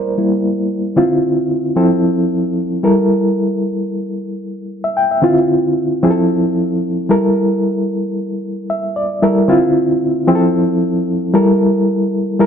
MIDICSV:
0, 0, Header, 1, 2, 480
1, 0, Start_track
1, 0, Tempo, 530973
1, 890, Time_signature, 4, 2, 24, 8
1, 11268, End_track
2, 0, Start_track
2, 0, Title_t, "Reed electric piano"
2, 0, Program_c, 0, 4
2, 0, Control_c, 0, 64, 127
2, 0, Note_on_c, 0, 55, 62
2, 0, Note_on_c, 0, 58, 61
2, 0, Note_on_c, 0, 64, 66
2, 0, Note_on_c, 0, 70, 81
2, 0, Note_on_c, 0, 72, 98
2, 0, Note_on_c, 0, 74, 86
2, 0, Note_on_c, 0, 76, 109
2, 158, Note_off_c, 0, 55, 0
2, 158, Note_on_c, 0, 55, 50
2, 163, Note_off_c, 0, 58, 0
2, 163, Note_on_c, 0, 58, 45
2, 164, Note_off_c, 0, 64, 0
2, 164, Note_on_c, 0, 64, 57
2, 371, Note_off_c, 0, 70, 0
2, 379, Note_off_c, 0, 55, 0
2, 382, Note_off_c, 0, 58, 0
2, 382, Note_off_c, 0, 64, 0
2, 870, Note_on_c, 0, 50, 83
2, 875, Note_on_c, 0, 60, 72
2, 878, Note_on_c, 0, 64, 75
2, 881, Note_on_c, 0, 65, 82
2, 901, Control_c, 0, 64, 0
2, 902, Note_off_c, 0, 76, 0
2, 904, Note_off_c, 0, 74, 0
2, 907, Note_off_c, 0, 72, 0
2, 1051, Control_c, 0, 64, 127
2, 1563, Note_off_c, 0, 50, 0
2, 1566, Note_off_c, 0, 60, 0
2, 1567, Note_off_c, 0, 64, 0
2, 1569, Note_off_c, 0, 65, 0
2, 1589, Note_on_c, 0, 53, 76
2, 1594, Note_on_c, 0, 60, 79
2, 1599, Note_on_c, 0, 64, 72
2, 1600, Note_on_c, 0, 69, 85
2, 1622, Control_c, 0, 64, 0
2, 1788, Control_c, 0, 64, 127
2, 2373, Note_off_c, 0, 53, 0
2, 2376, Note_off_c, 0, 60, 0
2, 2378, Note_off_c, 0, 64, 0
2, 2379, Note_off_c, 0, 69, 0
2, 2560, Note_on_c, 0, 55, 76
2, 2564, Note_on_c, 0, 64, 68
2, 2568, Note_on_c, 0, 69, 73
2, 2574, Note_on_c, 0, 70, 90
2, 2585, Control_c, 0, 64, 0
2, 2743, Control_c, 0, 64, 127
2, 3341, Note_off_c, 0, 55, 0
2, 3343, Note_off_c, 0, 64, 0
2, 3345, Note_off_c, 0, 69, 0
2, 3348, Note_off_c, 0, 70, 0
2, 4376, Note_on_c, 0, 76, 63
2, 4489, Note_off_c, 0, 76, 0
2, 4490, Note_on_c, 0, 79, 65
2, 4617, Note_off_c, 0, 79, 0
2, 4621, Note_on_c, 0, 76, 60
2, 4716, Note_on_c, 0, 50, 86
2, 4723, Note_on_c, 0, 60, 68
2, 4730, Note_on_c, 0, 64, 83
2, 4733, Note_on_c, 0, 65, 93
2, 4755, Control_c, 0, 64, 0
2, 4853, Note_off_c, 0, 76, 0
2, 4885, Control_c, 0, 64, 127
2, 5413, Note_off_c, 0, 50, 0
2, 5416, Note_off_c, 0, 60, 0
2, 5420, Note_off_c, 0, 64, 0
2, 5421, Note_off_c, 0, 65, 0
2, 5448, Note_on_c, 0, 53, 87
2, 5450, Note_on_c, 0, 60, 81
2, 5456, Note_on_c, 0, 64, 78
2, 5460, Note_on_c, 0, 68, 77
2, 5477, Control_c, 0, 64, 0
2, 5519, Note_on_c, 0, 69, 87
2, 5523, Note_off_c, 0, 68, 0
2, 5632, Control_c, 0, 64, 127
2, 6228, Note_off_c, 0, 53, 0
2, 6229, Note_off_c, 0, 60, 0
2, 6232, Note_off_c, 0, 64, 0
2, 6264, Note_off_c, 0, 69, 0
2, 6411, Note_on_c, 0, 55, 79
2, 6418, Note_on_c, 0, 64, 73
2, 6423, Note_on_c, 0, 69, 81
2, 6428, Note_on_c, 0, 70, 94
2, 6437, Control_c, 0, 64, 0
2, 6581, Control_c, 0, 64, 127
2, 7190, Note_off_c, 0, 55, 0
2, 7193, Note_off_c, 0, 64, 0
2, 7196, Note_off_c, 0, 69, 0
2, 7198, Note_off_c, 0, 70, 0
2, 7864, Note_on_c, 0, 76, 62
2, 8088, Note_off_c, 0, 76, 0
2, 8101, Note_on_c, 0, 74, 71
2, 8326, Note_off_c, 0, 74, 0
2, 8337, Note_on_c, 0, 55, 74
2, 8340, Note_on_c, 0, 64, 76
2, 8343, Note_on_c, 0, 76, 67
2, 8346, Note_on_c, 0, 69, 74
2, 8349, Note_on_c, 0, 70, 90
2, 8514, Note_off_c, 0, 55, 0
2, 8516, Note_off_c, 0, 64, 0
2, 8519, Note_off_c, 0, 69, 0
2, 8520, Note_off_c, 0, 70, 0
2, 8566, Note_off_c, 0, 76, 0
2, 8568, Note_on_c, 0, 50, 85
2, 8571, Note_on_c, 0, 60, 88
2, 8578, Note_on_c, 0, 64, 85
2, 8584, Note_on_c, 0, 65, 102
2, 8597, Control_c, 0, 64, 0
2, 8770, Control_c, 0, 64, 127
2, 9086, Note_off_c, 0, 50, 0
2, 9087, Note_off_c, 0, 60, 0
2, 9091, Note_off_c, 0, 64, 0
2, 9094, Note_off_c, 0, 65, 0
2, 9287, Note_on_c, 0, 53, 96
2, 9290, Note_on_c, 0, 60, 90
2, 9296, Note_on_c, 0, 64, 80
2, 9301, Note_on_c, 0, 68, 72
2, 9314, Control_c, 0, 64, 0
2, 9358, Note_on_c, 0, 69, 97
2, 9362, Note_off_c, 0, 68, 0
2, 9487, Control_c, 0, 64, 127
2, 10062, Note_off_c, 0, 53, 0
2, 10063, Note_off_c, 0, 60, 0
2, 10066, Note_off_c, 0, 64, 0
2, 10097, Note_off_c, 0, 69, 0
2, 10248, Note_on_c, 0, 55, 91
2, 10250, Note_on_c, 0, 64, 76
2, 10258, Note_on_c, 0, 69, 82
2, 10260, Note_on_c, 0, 70, 92
2, 10267, Control_c, 0, 64, 0
2, 10418, Control_c, 0, 64, 127
2, 11019, Note_off_c, 0, 55, 0
2, 11020, Note_off_c, 0, 64, 0
2, 11024, Note_off_c, 0, 69, 0
2, 11025, Note_off_c, 0, 70, 0
2, 11205, Note_on_c, 0, 55, 79
2, 11212, Note_on_c, 0, 64, 86
2, 11212, Note_on_c, 0, 69, 83
2, 11221, Note_on_c, 0, 70, 98
2, 11268, Note_off_c, 0, 55, 0
2, 11268, Note_off_c, 0, 64, 0
2, 11268, Note_off_c, 0, 69, 0
2, 11268, Note_off_c, 0, 70, 0
2, 11268, End_track
0, 0, End_of_file